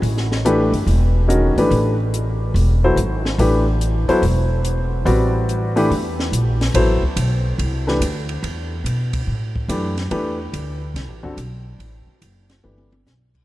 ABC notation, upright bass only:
X:1
M:4/4
L:1/8
Q:"Swing" 1/4=143
K:A
V:1 name="Upright bass" clef=bass
A,,,3 =G,,, E,,,3 ^G,,, | A,,,4 E,,,2 G,,,2 | A,,,3 z E,,,4 | A,,,4 E,,2 ^A,,,2 |
A,,, z B,,,2 =C,,2 D,,2 | E,,2 B,,2 A,,2 F,,2 | E,,2 D,,2 (3=C,, A,,, =G,,, B,,,2 | A,,, z F,,,2 =G,,,2 B,,,2 |]